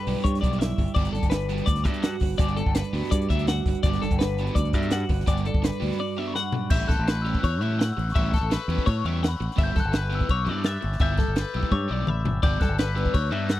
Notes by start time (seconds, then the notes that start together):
Already playing: G2 G3 D4 G4 B4
0.07 B1 G3 B3 D4 E4 G4, open hi-hat
0.17 E4
0.24 G2 G4 C#5, muted overdriven electric guitar stroke, kick, closed hi-hat
0.35 snare, closed hi-hat
0.41 B1 G3 B3 D4 E4 G4 D5, kick, closed hi-hat
0.53 closed hi-hat
0.59 E4 E5, muted overdriven electric guitar stroke, snare, closed hi-hat
0.70 closed hi-hat
0.78 G1 G4, muted overdriven electric guitar stroke, kick, open hi-hat
0.88 closed hi-hat
0.95 G1 G2 G3 B3 D4 G4 D5, kick, crash
1.05 closed hi-hat
1.13 G1 D4 A4, muted overdriven electric guitar stroke, closed hi-hat
1.23 G1, kick, closed hi-hat
1.30 B4, muted overdriven electric guitar stroke, snare, closed hi-hat
1.40 closed hi-hat
1.49 G3 B3 D4 F#4 G4, closed hi-hat
1.58 closed hi-hat
1.66 D2 B4 D5, muted overdriven electric guitar stroke, kick, closed hi-hat
1.76 snare, closed hi-hat
1.84 G2 G3 B3 D4 G4 E5, kick, closed hi-hat
1.94 closed hi-hat
2.03 F#4 F#5, muted overdriven electric guitar stroke, snare, closed hi-hat
2.20 G1 B4, muted overdriven electric guitar stroke, kick, open hi-hat
2.38 G1 G2 G3 B3 D4 G4 D5, kick, closed hi-hat
2.48 closed hi-hat
2.57 D4 A4, muted overdriven electric guitar stroke, closed hi-hat
2.66 G1, kick
2.75 B4, muted overdriven electric guitar stroke, snare, closed hi-hat
2.84 closed hi-hat
2.93 D2 G3 B3 D4 F#4 G4, open hi-hat
3.04 snare
3.11 G2 B4 D5, muted overdriven electric guitar stroke, kick, closed hi-hat
3.22 closed hi-hat
3.30 D2 G3 B3 D4 G4 E5, kick, closed hi-hat
3.39 closed hi-hat
3.47 F#4 F#5, muted overdriven electric guitar stroke, snare, closed hi-hat
3.57 closed hi-hat
3.66 G1 B4, muted overdriven electric guitar stroke, kick, open hi-hat
3.75 closed hi-hat
3.83 G1 G2 G3 B3 D4 D5, kick, closed hi-hat
3.87 G4
3.93 snare, closed hi-hat
4.02 G1 D4 A4, muted overdriven electric guitar stroke, snare, closed hi-hat
4.11 G1, kick, closed hi-hat
4.19 B4, muted overdriven electric guitar stroke, snare, closed hi-hat
4.23 B4
4.30 closed hi-hat
4.38 G3 B3 D4 F#4 G4, closed hi-hat
4.47 closed hi-hat
4.55 D2 B4 D5, kick, closed hi-hat
4.59 muted overdriven electric guitar stroke
4.65 closed hi-hat
4.73 G2 G3 B3 D4 G4 E5, kick, closed hi-hat
4.82 closed hi-hat
4.91 F#4 F#5, muted overdriven electric guitar stroke, snare, closed hi-hat
5.09 G1 B4, muted overdriven electric guitar stroke, kick, open hi-hat
5.20 snare
5.27 G1 G2 G3 B3 D4 G4 D5, kick, closed hi-hat
5.37 closed hi-hat
5.45 D4 A4, muted overdriven electric guitar stroke, closed hi-hat
5.54 G1, kick
5.63 B4, muted overdriven electric guitar stroke, snare, closed hi-hat
5.72 closed hi-hat
5.81 D2 G3 B3 D4 F#4 G4, open hi-hat
5.92 snare
6.00 B4 D5, muted overdriven electric guitar stroke
6.17 G3 B3 D4 G4 E5
6.27 C#6
6.34 F#5 B5, muted overdriven electric guitar stroke, snare
6.52 G2, muted overdriven electric guitar stroke, floor tom
6.70 A1 E3 G3 C#4 G4 E5 G6, kick, crash
6.88 A1 A4 F#6, muted overdriven electric guitar stroke, kick, snare, crash
6.99 A1
7.07 B4, muted overdriven electric guitar stroke, snare, crash
7.22 G4 E6
7.26 E3 G3 C#4, crash
7.35 kick
7.41 E2 C#5 F#6, muted overdriven electric guitar stroke, kick, crash
7.61 A2 E3 G3 C#4 G4 E5, crash
7.79 F#5, muted overdriven electric guitar stroke, snare, crash
7.93 E6
7.97 A1, muted overdriven electric guitar stroke, crash
8.09 C#6, snare
8.15 A1 E3 G3 C#4 G4 E5, kick, crash
8.33 A4, muted overdriven electric guitar stroke, kick, snare, crash
8.41 A1
8.51 B4, muted overdriven electric guitar stroke, snare, crash
8.68 E2 E3 G3 C#4 G4, crash
8.78 kick
8.86 A2 C#5, muted overdriven electric guitar stroke, kick, crash
9.05 E2 E3 G3 C#4 G4 E5, crash
9.22 F#5, muted overdriven electric guitar stroke, snare, crash
9.28 B5
9.40 A1, muted overdriven electric guitar stroke, crash
9.51 snare
9.56 G1 G3 B3 E4 G4 E5, kick, crash
9.63 G6
9.75 G1 A4, muted overdriven electric guitar stroke, kick, snare, crash
9.80 F#6
9.85 G1
9.93 B4, muted overdriven electric guitar stroke, snare, crash
10.10 G3 B3 E4 G4, crash
10.15 E6
10.21 kick
10.29 B1 C#5 D6, muted overdriven electric guitar stroke, kick, crash
10.46 G2 G3 B3 E4 G4 D5, crash
10.64 E5 A6, muted overdriven electric guitar stroke, snare, crash
10.81 G1, muted overdriven electric guitar stroke, crash
10.92 snare
10.99 G1 G3 B3 E4 G4 E5 G6, kick, crash
11.17 A4, muted overdriven electric guitar stroke, kick, snare, crash
11.28 G1
11.36 B4, muted overdriven electric guitar stroke, snare, crash
11.54 B1 G3 B3 E4 G4 E6, crash
11.63 kick
11.71 G2 C#5 D6, muted overdriven electric guitar stroke, kick, high tom
11.88 B1 G3 B3 E4 G4 D5
12.06 A1 E5 B5, muted overdriven electric guitar stroke, mid tom
12.25 G1, muted overdriven electric guitar stroke, floor tom
12.43 G1 G3 B3 D4 G4 D5 G6, kick, crash
12.60 G1 A4 F#6, muted overdriven electric guitar stroke, kick, snare, crash
12.69 G1
12.78 B4, muted overdriven electric guitar stroke, snare, crash
12.96 G3 B3 D4 G4 E6, crash
13.06 kick
13.14 D2 C#5 F#6, muted overdriven electric guitar stroke, kick, crash
13.31 G2 G3 B3 D4 G4 E5, crash
13.49 F#5, muted overdriven electric guitar stroke, snare, crash